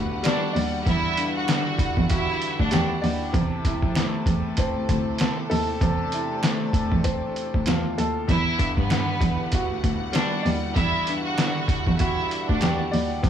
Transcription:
Already playing: D2 E2 G2 D3 G3 E4 F#4 F#5
0.23 G3 D4 D5, finger snap, snare, closed hi-hat
0.53 D#2 D5, open hi-hat
0.86 E2 E4 E5, kick, closed hi-hat
1.17 G2, closed hi-hat
1.34 F#4 F#5
1.48 D3, finger snap, snare, closed hi-hat
1.79 kick, closed hi-hat
1.97 E2, kick
2.09 E4 F#4 E5, kick, closed hi-hat
2.42 closed hi-hat
2.59 D2 D4 D5, kick
2.71 E2 G4, finger snap, snare, closed hi-hat
3.02 D#2 D5, open hi-hat
3.33 E2 C3 A3 A4, kick, closed hi-hat
3.65 E4, kick, closed hi-hat
3.82 F2, kick
3.95 A3, finger snap, snare, closed hi-hat
4.26 E2, kick, closed hi-hat
4.57 C4, kick, closed hi-hat
4.76 D2
4.89 D2, kick, closed hi-hat
5.18 finger snap, snare, closed hi-hat
5.50 D#2 A4, open hi-hat
5.81 E2 C3 D4, kick, closed hi-hat
6.12 E4, closed hi-hat
6.43 A3, finger snap, snare, closed hi-hat
6.73 kick, closed hi-hat
6.92 E2, kick
7.04 C4, kick, closed hi-hat
7.36 closed hi-hat
7.54 D2, kick
7.66 E2 F4, finger snap, snare, closed hi-hat
7.98 D#2 A4, closed hi-hat
8.27 E2 D3 G3 E4 E5 F#5, kick, closed hi-hat
8.57 G2, kick, closed hi-hat
8.77 G2 B3 B4, kick
8.90 D3, finger snap, snare, closed hi-hat
9.21 E2, kick, closed hi-hat
9.52 F#4, kick, closed hi-hat
9.70 D2
9.84 D2, kick, closed hi-hat
10.13 G3 D4 D5, finger snap, snare, closed hi-hat
10.43 D#2 D5, open hi-hat
10.75 E2 E4 E5, kick, closed hi-hat
11.07 G2, closed hi-hat
11.24 F#4 F#5
11.38 D3, finger snap, snare, closed hi-hat
11.68 kick, closed hi-hat
11.87 E2, kick
11.98 E4 F#4 E5, kick, closed hi-hat
12.31 closed hi-hat
12.49 D2 D4 D5, kick
12.61 E2 G4, finger snap, snare, closed hi-hat
12.91 D#2 D5, open hi-hat
13.23 E2 C3 A3 A4, kick, closed hi-hat

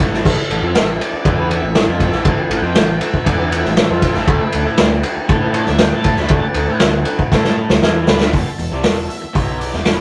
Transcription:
0.00 A1 A2 E3 A3 E4 A4, kick, ride
0.14 snare
0.25 A1 A2 E3 A3 E4 A4 E5, kick, crash
0.38 muted picked electric bass stroke, muted overdriven electric guitar stroke
0.50 A1 A2 E3 A3 E4 A4, ride
0.61 F2 F3 C4
0.75 A1 A2 E3 A3 E4 A4, snare, ride
0.99 A3 E4 F#4 D5, muted picked electric bass stroke, muted overdriven electric guitar stroke, ride
1.13 muted picked electric bass stroke, muted overdriven electric guitar stroke
1.24 E2 E3 A3 B3 E4 A4 D5, kick, ride
1.39 B4
1.47 A3 E4 A4 E5
1.51 ride
1.62 A1 A2 E3
1.72 A1 A3 E4 A4, snare, ride
1.77 A2 E3 E5
1.87 F2 F3 C4 F4
1.97 A3 E4 A4, kick, ride
2.12 A1 A2 E3, snare
2.24 A1 A2 E3 A3 E4 A4, kick, ride
2.38 muted picked electric bass stroke, muted overdriven electric guitar stroke
2.48 A1 A3 E4 A4, ride
2.52 A2 E3 G5
2.62 F2 F3 C4
2.74 A1 A2 E3 A3 E4 A4, snare, ride
3.00 A3 E4 A4 E5, muted overdriven electric guitar stroke, muted picked electric bass stroke, ride
3.14 muted overdriven electric guitar stroke, muted picked electric bass stroke, kick
3.26 E2 E3 A3 B3 E4 A4 D5, kick, ride
3.51 A3 E4 A4 E5, ride
3.64 A1 A2 E3, snare
3.77 A1 A2 E3 A3 E4 B4, snare, ride
3.89 F2 F3 C4 F4
4.02 A3 E4 A4, kick, ride
4.14 A1 A2 E3, snare
4.27 D2 D3 A3 D4 A4, kick, ride
4.41 muted overdriven electric guitar stroke, muted picked electric bass stroke
4.52 D2 D3 A3 D4 A4, ride
4.65 A2 A3 E4
4.78 D2 D3 A3, snare, ride
4.82 D4 A4
5.03 A3 D4 G4, muted overdriven electric guitar stroke, muted picked electric bass stroke, ride
5.15 muted overdriven electric guitar stroke, muted picked electric bass stroke
5.28 A2 A3 D4 E4 A4, kick, ride
5.54 A3 A4 D5, ride
5.58 D4
5.66 D2 D3 A3 E5, snare
5.78 D2 D3 A3 G5, snare, ride
5.82 D4 A4
5.92 A2 A3 E4 A4 A5
6.04 A3 D4 A4, kick, ride
6.16 D2 D3 A3 B5, snare
6.28 D2 D3 A3 D4 A4 A5, kick, ride
6.43 muted overdriven electric guitar stroke, muted picked electric bass stroke
6.54 D2 D3 A3 D4 A4, ride
6.68 A2 A3 E4
6.79 D2 D3 A3 D4 A4, snare, ride
7.05 A3 D4 A4, muted overdriven electric guitar stroke, ride
7.19 muted picked electric bass stroke, muted overdriven electric guitar stroke, kick
7.31 A2 A3 D4 E4 A4, kick, snare
7.44 snare
7.57 A3 D4 A4
7.69 D2 D3 A3, snare
7.82 E2 E3 A3 B3 D4 E4 A4, snare
8.07 D2 D3 A3 D4 A4 B4, snare
8.20 snare
8.33 E1 E2 B2 B3 E4 G4 A4, kick, open hi-hat
8.46 muted picked electric bass stroke, muted overdriven electric guitar stroke
8.59 E1 E2 B2 B3 E4 F#4, open hi-hat
8.72 C2 C3 G3
8.84 E1 E2 B2 B3 E4 A4, snare, open hi-hat
9.09 B3 E4 F#4 E5, muted overdriven electric guitar stroke, muted picked electric bass stroke, open hi-hat
9.22 muted overdriven electric guitar stroke, muted picked electric bass stroke
9.33 B1 B2 F#3 B3 E4 G4, kick, open hi-hat
9.60 B3 E4 G4 D5, open hi-hat
9.73 E1 E2 B2, snare
9.85 E1 E2 B2 B3 E4 A4, snare, open hi-hat
9.91 B4

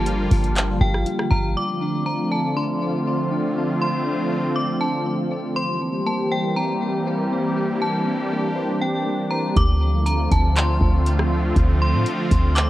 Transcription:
Already playing: G1 D3 F3 G3 A#3 F4 F5 A5
0.06 G4, closed hi-hat
0.31 G1 F4, kick, closed hi-hat, open hi-hat
0.44 closed hi-hat
0.56 F5, clap, closed hi-hat
0.81 G1 G4 G5, kick
0.95 cross-stick
1.06 F4, closed hi-hat
1.19 cross-stick
1.31 G1 F5 A#5, kick
1.56 D3 F3 A3 C4 F4 D5 D6
1.81 D4
2.06 C4 A#5
2.31 D5 A5
2.57 D4 C6
2.82 C4
3.07 D5
3.31 D4
3.57 C4
3.82 C6
4.06 D4
4.31 C4
4.56 D5 D6
4.80 D4 A5
5.06 C4
5.31 D5
5.56 E3 G3 A#3 G4 C5 C6
5.81 C4
6.06 A#3 A5
6.32 C5 G5
6.56 C4 A#5
6.81 A#3
7.07 C5
7.31 C4
7.56 A#3 D4
7.82 A5
8.06 C4
8.32 A#3
8.56 C5
8.81 C4 G5
9.06 A#3
9.31 C5 A#5
9.56 D2 D3 F3 A3 C4 F4 D6, kick, closed hi-hat
10.06 A#5, closed hi-hat
10.31 D2 A5, kick, closed hi-hat
10.56 C6, clap, closed hi-hat
10.81 D2, kick
11.06 closed hi-hat
11.19 cross-stick
11.56 D2, kick, closed hi-hat
11.82 C6
11.94 A2
12.06 closed hi-hat
12.31 D2, kick, closed hi-hat
12.56 D6, clap, closed hi-hat

